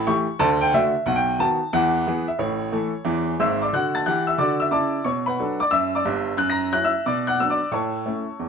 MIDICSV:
0, 0, Header, 1, 2, 480
1, 0, Start_track
1, 0, Key_signature, 2, "major"
1, 0, Tempo, 332410
1, 1544, Time_signature, 4, 2, 24, 8
1, 12255, End_track
2, 0, Start_track
2, 0, Title_t, "Upright piano"
2, 0, Program_c, 0, 0
2, 0, Control_c, 0, 64, 127
2, 99, Note_on_c, 0, 57, 53
2, 101, Note_on_c, 0, 52, 50
2, 101, Note_on_c, 0, 85, 99
2, 103, Note_on_c, 0, 67, 67
2, 118, Control_c, 0, 64, 0
2, 365, Note_off_c, 0, 57, 0
2, 366, Note_off_c, 0, 52, 0
2, 367, Note_off_c, 0, 67, 0
2, 568, Note_on_c, 0, 38, 87
2, 570, Note_on_c, 0, 50, 82
2, 575, Note_on_c, 0, 81, 104
2, 583, Note_off_c, 0, 85, 0
2, 826, Control_c, 0, 64, 127
2, 883, Note_on_c, 0, 79, 98
2, 894, Note_off_c, 0, 81, 0
2, 983, Note_off_c, 0, 38, 0
2, 983, Note_off_c, 0, 50, 0
2, 1056, Note_off_c, 0, 79, 0
2, 1065, Note_on_c, 0, 50, 51
2, 1068, Note_on_c, 0, 57, 53
2, 1071, Note_on_c, 0, 76, 99
2, 1078, Note_on_c, 0, 66, 63
2, 1086, Control_c, 0, 64, 0
2, 1329, Note_off_c, 0, 50, 0
2, 1331, Note_off_c, 0, 57, 0
2, 1338, Note_off_c, 0, 66, 0
2, 1528, Note_on_c, 0, 35, 73
2, 1537, Note_on_c, 0, 78, 77
2, 1541, Note_on_c, 0, 47, 67
2, 1547, Note_off_c, 0, 76, 0
2, 1669, Note_on_c, 0, 79, 84
2, 1697, Note_off_c, 0, 78, 0
2, 1785, Control_c, 0, 64, 127
2, 1942, Note_off_c, 0, 35, 0
2, 1949, Note_off_c, 0, 47, 0
2, 2007, Note_off_c, 0, 79, 0
2, 2010, Note_on_c, 0, 51, 49
2, 2013, Note_on_c, 0, 59, 44
2, 2022, Note_on_c, 0, 81, 94
2, 2031, Note_on_c, 0, 66, 54
2, 2045, Control_c, 0, 64, 0
2, 2277, Note_off_c, 0, 51, 0
2, 2279, Note_off_c, 0, 59, 0
2, 2292, Note_off_c, 0, 66, 0
2, 2499, Note_on_c, 0, 40, 81
2, 2501, Note_on_c, 0, 78, 92
2, 2502, Note_off_c, 0, 81, 0
2, 2502, Note_on_c, 0, 52, 74
2, 2747, Control_c, 0, 64, 127
2, 2908, Note_off_c, 0, 40, 0
2, 2910, Note_off_c, 0, 52, 0
2, 2985, Note_on_c, 0, 52, 53
2, 2989, Note_on_c, 0, 59, 52
2, 3001, Control_c, 0, 64, 0
2, 3003, Note_on_c, 0, 68, 48
2, 3248, Note_off_c, 0, 52, 0
2, 3251, Note_off_c, 0, 59, 0
2, 3261, Note_off_c, 0, 68, 0
2, 3293, Note_on_c, 0, 76, 61
2, 3295, Note_off_c, 0, 78, 0
2, 3448, Note_on_c, 0, 33, 57
2, 3450, Note_on_c, 0, 45, 68
2, 3453, Note_on_c, 0, 73, 70
2, 3460, Note_off_c, 0, 76, 0
2, 3720, Control_c, 0, 64, 127
2, 3861, Note_off_c, 0, 33, 0
2, 3863, Note_off_c, 0, 45, 0
2, 3931, Note_on_c, 0, 52, 49
2, 3931, Note_on_c, 0, 57, 51
2, 3943, Note_on_c, 0, 69, 50
2, 3953, Control_c, 0, 64, 0
2, 4198, Note_off_c, 0, 52, 0
2, 4198, Note_off_c, 0, 57, 0
2, 4206, Note_off_c, 0, 69, 0
2, 4398, Note_on_c, 0, 52, 70
2, 4408, Note_on_c, 0, 40, 71
2, 4816, Note_off_c, 0, 52, 0
2, 4822, Note_off_c, 0, 40, 0
2, 4906, Note_on_c, 0, 44, 70
2, 4908, Note_on_c, 0, 32, 70
2, 4915, Note_on_c, 0, 88, 77
2, 4926, Note_on_c, 0, 76, 68
2, 5207, Note_off_c, 0, 76, 0
2, 5212, Note_off_c, 0, 73, 0
2, 5223, Note_off_c, 0, 88, 0
2, 5223, Note_on_c, 0, 86, 64
2, 5242, Note_on_c, 0, 74, 42
2, 5289, Note_off_c, 0, 32, 0
2, 5289, Note_off_c, 0, 44, 0
2, 5384, Note_off_c, 0, 74, 0
2, 5384, Note_on_c, 0, 50, 57
2, 5385, Note_off_c, 0, 86, 0
2, 5397, Note_on_c, 0, 90, 74
2, 5410, Note_on_c, 0, 78, 53
2, 5418, Note_on_c, 0, 66, 54
2, 5634, Control_c, 0, 64, 127
2, 5690, Note_off_c, 0, 78, 0
2, 5701, Note_on_c, 0, 93, 64
2, 5704, Note_off_c, 0, 90, 0
2, 5707, Note_on_c, 0, 81, 54
2, 5767, Note_off_c, 0, 50, 0
2, 5788, Note_off_c, 0, 66, 0
2, 5856, Note_off_c, 0, 81, 0
2, 5864, Note_off_c, 0, 93, 0
2, 5864, Note_on_c, 0, 90, 70
2, 5866, Note_on_c, 0, 52, 58
2, 5878, Control_c, 0, 64, 0
2, 5887, Note_on_c, 0, 78, 54
2, 5889, Note_on_c, 0, 67, 64
2, 6167, Note_on_c, 0, 88, 71
2, 6168, Note_off_c, 0, 78, 0
2, 6178, Note_off_c, 0, 90, 0
2, 6181, Note_on_c, 0, 76, 56
2, 6249, Note_off_c, 0, 52, 0
2, 6262, Note_off_c, 0, 67, 0
2, 6327, Note_on_c, 0, 50, 66
2, 6332, Note_on_c, 0, 86, 78
2, 6333, Note_off_c, 0, 76, 0
2, 6338, Note_off_c, 0, 88, 0
2, 6353, Note_on_c, 0, 74, 58
2, 6360, Note_on_c, 0, 66, 62
2, 6641, Note_off_c, 0, 74, 0
2, 6641, Note_on_c, 0, 88, 74
2, 6652, Note_off_c, 0, 86, 0
2, 6664, Note_on_c, 0, 76, 56
2, 6717, Note_off_c, 0, 50, 0
2, 6737, Note_off_c, 0, 66, 0
2, 6798, Note_on_c, 0, 49, 59
2, 6807, Note_on_c, 0, 86, 74
2, 6815, Note_off_c, 0, 76, 0
2, 6815, Note_off_c, 0, 88, 0
2, 6818, Note_on_c, 0, 74, 60
2, 6824, Note_on_c, 0, 81, 56
2, 6837, Note_on_c, 0, 64, 63
2, 7193, Note_off_c, 0, 49, 0
2, 7216, Note_off_c, 0, 64, 0
2, 7267, Note_off_c, 0, 74, 0
2, 7271, Note_off_c, 0, 81, 0
2, 7285, Note_on_c, 0, 85, 74
2, 7289, Note_on_c, 0, 47, 60
2, 7296, Note_off_c, 0, 86, 0
2, 7302, Note_on_c, 0, 73, 57
2, 7564, Control_c, 0, 64, 127
2, 7596, Note_off_c, 0, 73, 0
2, 7598, Note_on_c, 0, 83, 70
2, 7609, Note_off_c, 0, 85, 0
2, 7617, Note_on_c, 0, 71, 55
2, 7618, Note_on_c, 0, 78, 48
2, 7704, Note_off_c, 0, 47, 0
2, 7787, Note_on_c, 0, 54, 43
2, 7791, Note_on_c, 0, 62, 44
2, 7791, Note_on_c, 0, 69, 48
2, 7796, Control_c, 0, 64, 0
2, 8050, Note_off_c, 0, 54, 0
2, 8054, Note_off_c, 0, 62, 0
2, 8054, Note_off_c, 0, 69, 0
2, 8065, Note_off_c, 0, 71, 0
2, 8065, Note_off_c, 0, 78, 0
2, 8089, Note_off_c, 0, 83, 0
2, 8089, Note_on_c, 0, 86, 88
2, 8123, Note_on_c, 0, 74, 63
2, 8245, Note_on_c, 0, 88, 103
2, 8247, Note_on_c, 0, 42, 64
2, 8260, Note_off_c, 0, 86, 0
2, 8266, Note_off_c, 0, 74, 0
2, 8271, Note_on_c, 0, 76, 69
2, 8561, Note_off_c, 0, 76, 0
2, 8570, Note_off_c, 0, 88, 0
2, 8595, Note_on_c, 0, 86, 71
2, 8607, Note_on_c, 0, 74, 60
2, 8663, Note_off_c, 0, 42, 0
2, 8739, Note_on_c, 0, 31, 75
2, 8743, Note_on_c, 0, 43, 69
2, 8749, Note_off_c, 0, 74, 0
2, 8753, Note_off_c, 0, 86, 0
2, 9126, Note_off_c, 0, 31, 0
2, 9128, Note_off_c, 0, 43, 0
2, 9198, Note_on_c, 0, 42, 72
2, 9214, Note_on_c, 0, 90, 91
2, 9377, Note_off_c, 0, 90, 0
2, 9381, Note_on_c, 0, 94, 78
2, 9402, Note_on_c, 0, 82, 67
2, 9468, Control_c, 0, 64, 127
2, 9619, Note_off_c, 0, 42, 0
2, 9694, Note_off_c, 0, 82, 0
2, 9705, Note_off_c, 0, 94, 0
2, 9708, Note_on_c, 0, 54, 49
2, 9715, Note_on_c, 0, 90, 92
2, 9717, Note_on_c, 0, 61, 46
2, 9728, Control_c, 0, 64, 0
2, 9728, Note_on_c, 0, 64, 53
2, 9868, Note_off_c, 0, 90, 0
2, 9885, Note_on_c, 0, 88, 86
2, 9889, Note_on_c, 0, 76, 65
2, 9972, Note_off_c, 0, 54, 0
2, 9978, Note_off_c, 0, 61, 0
2, 9986, Note_off_c, 0, 64, 0
2, 10178, Note_off_c, 0, 76, 0
2, 10197, Note_on_c, 0, 47, 70
2, 10197, Note_on_c, 0, 86, 80
2, 10198, Note_off_c, 0, 88, 0
2, 10220, Note_on_c, 0, 74, 66
2, 10432, Control_c, 0, 64, 127
2, 10497, Note_off_c, 0, 74, 0
2, 10502, Note_on_c, 0, 90, 73
2, 10507, Note_off_c, 0, 86, 0
2, 10515, Note_on_c, 0, 78, 69
2, 10601, Note_off_c, 0, 47, 0
2, 10663, Note_off_c, 0, 78, 0
2, 10667, Note_off_c, 0, 90, 0
2, 10682, Note_on_c, 0, 59, 39
2, 10687, Control_c, 0, 64, 0
2, 10687, Note_on_c, 0, 54, 45
2, 10689, Note_on_c, 0, 88, 83
2, 10700, Note_on_c, 0, 62, 46
2, 10831, Note_on_c, 0, 86, 65
2, 10835, Note_off_c, 0, 88, 0
2, 10840, Note_on_c, 0, 74, 57
2, 10942, Note_off_c, 0, 59, 0
2, 10946, Note_off_c, 0, 54, 0
2, 10955, Note_off_c, 0, 62, 0
2, 11133, Note_off_c, 0, 74, 0
2, 11141, Note_on_c, 0, 45, 60
2, 11147, Note_on_c, 0, 85, 62
2, 11151, Note_off_c, 0, 86, 0
2, 11169, Note_on_c, 0, 81, 49
2, 11171, Note_on_c, 0, 73, 51
2, 11389, Control_c, 0, 64, 127
2, 11552, Note_off_c, 0, 45, 0
2, 11636, Note_on_c, 0, 57, 40
2, 11637, Note_on_c, 0, 61, 39
2, 11642, Note_on_c, 0, 64, 41
2, 11650, Control_c, 0, 64, 0
2, 11898, Note_off_c, 0, 57, 0
2, 11898, Note_off_c, 0, 61, 0
2, 11902, Note_off_c, 0, 64, 0
2, 12121, Note_on_c, 0, 40, 49
2, 12255, Note_off_c, 0, 40, 0
2, 12255, Note_off_c, 0, 73, 0
2, 12255, Note_off_c, 0, 81, 0
2, 12255, Note_off_c, 0, 85, 0
2, 12255, End_track
0, 0, End_of_file